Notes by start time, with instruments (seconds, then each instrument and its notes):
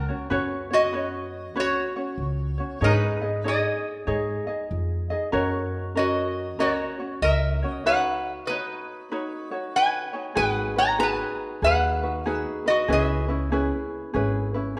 Already playing: ukulele C#4 C#5, resonator guitar played with a steel bar A#4 F#5
0.08 ukulele C#4 F#4 C#5
0.30 upright bass F#2, ukulele C#4 F#4 B4 C#5
0.71 ukulele C#4 F#4 C#5, resonator guitar played with a steel bar F#4 D#5
0.93 ukulele C#4 F#4 B4 C#5
1.56 upright bass C#2, ukulele C#4 F#4 B4 C#5
1.60 resonator guitar played with a steel bar F#4 C#5
1.96 ukulele C#4 F#4 C#5
2.18 upright bass C#2
2.58 ukulele C#4 F#4 C#5
2.81 upright bass G#2, ukulele D#4 G#4 C#5 D#5, resonator guitar played with a steel bar B4
2.85 resonator guitar played with a steel bar D#4
3.22 ukulele D#4 G#4 D#5
3.44 ukulele D#4 G#4 C#5 D#5, resonator guitar played with a steel bar D#5
3.49 resonator guitar played with a steel bar G#4
4.07 upright bass G#2, ukulele D#4 G#4 C#5 D#5
4.47 ukulele D#4 G#4 D#5
4.71 upright bass F2
5.10 ukulele D#4 G#4 D#5
5.32 upright bass F#2, ukulele C#4 F#4 A#4 C#5
5.95 ukulele C#4 F#4 A#4 C#5, resonator guitar played with a steel bar F#4 D#5
6.59 upright bass C#2, ukulele C#4 F#4 A#4 C#5, resonator guitar played with a steel bar F#4 C#5
6.99 ukulele C#4 F#4 C#5
7.22 upright bass C#2, resonator guitar played with a steel bar A#4 E5
7.62 ukulele C#4 F#4 C#5
7.68 resonator guitar played with a steel bar D#5
7.86 ukulele D#4 F#4 B4 C#5, resonator guitar played with a steel bar B4 F#5
8.47 ukulele D#4 F#4 B4 C#5, resonator guitar played with a steel bar D#4 B4
9.12 ukulele D#4 F#4 B4 C#5
9.51 ukulele D#4 F#4 C#5
9.76 resonator guitar played with a steel bar B4 G#5
10.13 ukulele D#4 F#4 C#5
10.35 upright bass G#1, ukulele D#4 F#4 G#4 B4, resonator guitar played with a steel bar B4 F#5
10.76 ukulele D#4 F#4 B4, resonator guitar played with a steel bar C#5 A#5
10.99 ukulele D#4 F#4 G#4 B4, resonator guitar played with a steel bar G#5
11.03 resonator guitar played with a steel bar B4
11.62 upright bass D#2, ukulele D#4 F#4 G#4 B4, resonator guitar played with a steel bar F#5
11.66 resonator guitar played with a steel bar B4
12.03 ukulele D#4 F#4 B4
12.26 ukulele D#4 F#4 G#4 B4
12.33 resonator guitar played with a steel bar E5
12.66 ukulele D#4 F#4 B4, resonator guitar played with a steel bar F#4 D#5
12.88 upright bass C#2, ukulele C#4 E4 G#4 B4
12.92 resonator guitar played with a steel bar G#4 E5
13.28 ukulele C#4 E4 B4
13.52 ukulele C#4 E4 G#4 B4
14.14 upright bass G#1, ukulele C#4 E4 G#4 B4
14.54 ukulele C#4 E4 B4